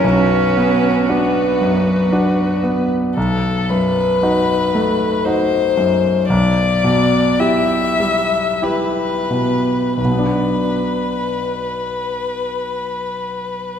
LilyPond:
<<
  \new Staff \with { instrumentName = "Violin" } { \time 3/4 \key b \minor \tempo 4 = 56 fis'2~ fis'8 r8 | a'8 b'4. c''4 | d''4 e''4 b'4 | b'2. | }
  \new Staff \with { instrumentName = "Violin" } { \time 3/4 \key b \minor b'4 b'2 | r2. | r2. | r2. | }
  \new Staff \with { instrumentName = "Grand piano" } { \time 3/4 \key b \minor b,,8 b8 <d' fis'>8 fis,8 <d' fis'>8 b8 | b,,8 fis,8 <dis' fis'>8 a8 <dis' fis'>8 fis,8 | b,,8 b,8 <e' g'>8 g8 <e' g'>8 b,8 | <b,, b, b d' fis' d''>2. | }
  \new Staff \with { instrumentName = "Cello" } { \time 3/4 \key b \minor cis'4 b4 r4 | r2. | r2. | r2. | }
>>